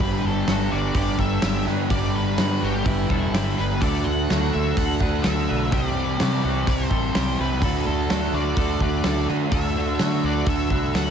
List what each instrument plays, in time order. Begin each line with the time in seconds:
0.00 fingered electric bass G1, overdriven electric guitar G2 D3 G3 B3 D4 G4, distorted electric guitar G2 D3 G3, clean electric guitar G4, lead electric guitar B4, kick
0.24 fingered electric bass G1, distorted electric guitar D3 G3, lead electric guitar A4
0.47 fingered electric bass G1, distorted electric guitar G2 D3 G3, overdriven electric guitar G3 B3 D4 G4, clean electric guitar F#4, snare, open hi-hat
0.70 fingered electric bass G1, distorted electric guitar D3 G3, clean electric guitar F#4, lead electric guitar D5
0.94 fingered electric bass G1, overdriven electric guitar G2 D3 G3 B3, clean electric guitar G4, lead electric guitar D5, kick, open hi-hat
0.99 overdriven electric guitar D4 G4
1.17 fingered electric bass G1, distorted electric guitar D3 G3, overdriven electric guitar D4 G4, clean electric guitar A4, lead electric guitar E5, kick
1.21 overdriven electric guitar G3 B3
1.41 fingered electric bass G1, distorted electric guitar G2 D3 G3, clean electric guitar G4, snare, open hi-hat
1.66 fingered electric bass G2, overdriven electric guitar G3 B3 D4 G4, clean electric guitar B4, snare
1.89 fingered electric bass G1, distorted electric guitar G2 D3 G3, overdriven electric guitar G2 D3 G3 B3 D4, clean electric guitar G4, lead electric guitar D5, kick, open hi-hat
1.93 overdriven electric guitar G4
2.14 distorted electric guitar D3 G3, lead electric guitar B4
2.37 fingered electric bass G2, distorted electric guitar G2 D3 G3, overdriven electric guitar G3 B3 D4 G4, clean electric guitar F#4, snare, open hi-hat
2.61 fingered electric bass G1, distorted electric guitar D3 G3, clean electric guitar F#4, lead electric guitar G4
2.85 fingered electric bass G1, overdriven electric guitar G2 D3 G3 B3 D4 G4, lead electric guitar E4, clean electric guitar G4, kick, open hi-hat
3.10 fingered electric bass E1, distorted electric guitar D3 G3, overdriven electric guitar G3 B3 D4 G4, clean electric guitar A4, kick
3.33 fingered electric bass G1, distorted electric guitar G2 D3 G3, clean electric guitar G4, snare, open hi-hat
3.58 fingered electric bass G1, overdriven electric guitar G3 B3 D4 G4, lead electric guitar B4, clean electric guitar B4, snare
3.81 fingered electric bass D2, overdriven electric guitar D3 A3 D4 F#4, distorted electric guitar D3 A3 D4, clean electric guitar A4, lead electric guitar D5, kick, open hi-hat
4.04 fingered electric bass D2, distorted electric guitar A3 D4, lead electric guitar F#5
4.29 fingered electric bass D2, distorted electric guitar D3 A3 D4, overdriven electric guitar D3 A3 D4 F#4, clean electric guitar F#4, snare, open hi-hat
4.51 fingered electric bass D2, distorted electric guitar A3 D4, clean electric guitar F#4, lead electric guitar E5
4.77 fingered electric bass D2, overdriven electric guitar D3 A3 D4 F#4, clean electric guitar A4, lead electric guitar F#5, kick, open hi-hat
5.00 fingered electric bass D2, distorted electric guitar A3 D4, overdriven electric guitar A3 D4 F#4, clean electric guitar B4, kick
5.22 fingered electric bass D2, distorted electric guitar D3 A3 D4, clean electric guitar A4, lead electric guitar E5, snare, open hi-hat
5.48 fingered electric bass B1, overdriven electric guitar A3 D4 F#4, clean electric guitar B4
5.71 fingered electric bass C2, distorted electric guitar C3 G3 C4, overdriven electric guitar C3 E3 G3 C4, clean electric guitar G4, lead electric guitar D5, kick, open hi-hat
5.75 overdriven electric guitar G4
5.95 distorted electric guitar G3 C4
6.18 distorted electric guitar C3 G3 C4, fingered electric bass C3, overdriven electric guitar E3 G3 C4 G4, clean electric guitar F#4, snare, open hi-hat
6.44 fingered electric bass C2, distorted electric guitar G3 C4, clean electric guitar F#4
6.66 fingered electric bass C2, overdriven electric guitar C3 E3 G3 C4 G4, clean electric guitar G4, kick, open hi-hat
6.70 lead electric guitar C5
6.90 fingered electric bass A1, distorted electric guitar G3 C4, overdriven electric guitar G3 C4 G4, clean electric guitar A4, kick
7.14 fingered electric bass C2, distorted electric guitar C3 G3 C4, clean electric guitar G4, snare, open hi-hat
7.39 fingered electric bass C2, overdriven electric guitar G3 C4 G4, clean electric guitar B4, lead electric guitar B4
7.62 fingered electric bass D2, overdriven electric guitar D3 A3 D4 F#4, distorted electric guitar D3 A3 D4, clean electric guitar A4, lead electric guitar B4, kick, open hi-hat
7.86 fingered electric bass D2, distorted electric guitar A3 D4, lead electric guitar A4
8.10 fingered electric bass D2, distorted electric guitar D3 A3 D4, overdriven electric guitar D3 A3 D4 F#4, clean electric guitar F#4, snare, open hi-hat
8.33 fingered electric bass D2, distorted electric guitar D4, clean electric guitar F#4, lead electric guitar D5
8.37 distorted electric guitar A3
8.56 fingered electric bass D2, overdriven electric guitar D3 A3 D4 F#4, clean electric guitar A4, kick, open hi-hat
8.80 fingered electric bass D2, distorted electric guitar A3 D4, overdriven electric guitar A3 D4 F#4, clean electric guitar B4, lead electric guitar D5, kick
9.04 fingered electric bass D2, distorted electric guitar D3 A3, clean electric guitar A4, snare, open hi-hat
9.08 distorted electric guitar D4
9.28 fingered electric bass D3, overdriven electric guitar A3 D4 F#4, clean electric guitar B4, snare
9.52 fingered electric bass D2, overdriven electric guitar D3 A3 D4 F#4, distorted electric guitar D3 A3 D4, clean electric guitar A4, lead electric guitar E5, kick, open hi-hat
9.76 distorted electric guitar A3 D4
9.99 overdriven electric guitar D3 A3 D4 F#4, fingered electric bass D3, distorted electric guitar D3 A3 D4, clean electric guitar F#4, snare, open hi-hat
10.23 fingered electric bass D2, distorted electric guitar A3 D4, clean electric guitar F#4, lead electric guitar D5
10.46 fingered electric bass D2, overdriven electric guitar D3 A3 D4 F#4, clean electric guitar A4, lead electric guitar E5, kick, open hi-hat
10.70 fingered electric bass C2, overdriven electric guitar A3 D4 F#4, distorted electric guitar A3 D4, clean electric guitar B4, kick
10.94 fingered electric bass D2, distorted electric guitar D3 A3 D4, clean electric guitar A4, lead electric guitar F#5, snare, open hi-hat